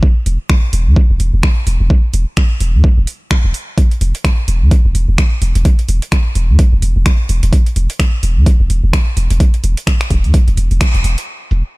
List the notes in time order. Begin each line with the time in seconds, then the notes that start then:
0.03 kick
0.26 E1, open hi-hat
0.50 finger snap, kick
0.73 E1, open hi-hat
0.87 E2
0.96 kick
1.10 E1
1.20 E1, open hi-hat
1.34 E1
1.43 finger snap, kick
1.67 E1, open hi-hat
1.80 E1
1.90 kick
2.14 E1, open hi-hat
2.37 finger snap, kick
2.60 E1, open hi-hat
2.74 E2
2.84 kick
2.98 E1
3.07 open hi-hat
3.31 finger snap, kick
3.44 E1
3.54 open hi-hat
3.78 kick, closed hi-hat
3.91 closed hi-hat
4.01 E1, open hi-hat
4.15 closed hi-hat
4.24 finger snap, kick, closed hi-hat
4.48 E1, open hi-hat
4.62 E2
4.71 kick, closed hi-hat
4.85 E1
4.95 E1, open hi-hat
5.08 E1
5.18 finger snap, kick, closed hi-hat
5.42 E1, open hi-hat
5.55 E1, closed hi-hat
5.65 kick, closed hi-hat
5.79 closed hi-hat
5.89 E1, open hi-hat
6.02 closed hi-hat
6.12 finger snap, kick, closed hi-hat
6.35 E1, open hi-hat
6.49 E2
6.59 kick, closed hi-hat
6.73 E1
6.82 E1, open hi-hat
6.96 E1
7.06 finger snap, kick, closed hi-hat
7.29 E1, open hi-hat
7.43 E1, closed hi-hat
7.53 kick, closed hi-hat
7.66 closed hi-hat
7.76 E1, open hi-hat
7.90 closed hi-hat
8.00 finger snap, kick, closed hi-hat
8.23 E1, open hi-hat
8.37 E2
8.46 kick, closed hi-hat
8.60 E1
8.70 E1, open hi-hat
8.84 E1
8.93 finger snap, kick, closed hi-hat
9.17 E1, open hi-hat
9.30 E1, closed hi-hat
9.40 kick, closed hi-hat
9.54 closed hi-hat
9.64 E1, open hi-hat
9.77 closed hi-hat
9.87 finger snap, kick, closed hi-hat
10.01 finger snap, closed hi-hat
10.10 E1, kick, open hi-hat
10.24 E2, open hi-hat
10.34 kick, closed hi-hat
10.48 E1, closed hi-hat
10.57 E1, open hi-hat
10.71 E1, open hi-hat
10.81 finger snap, kick, closed hi-hat
10.94 E1, closed hi-hat
11.04 E1, open hi-hat
11.18 closed hi-hat
11.51 E1, open hi-hat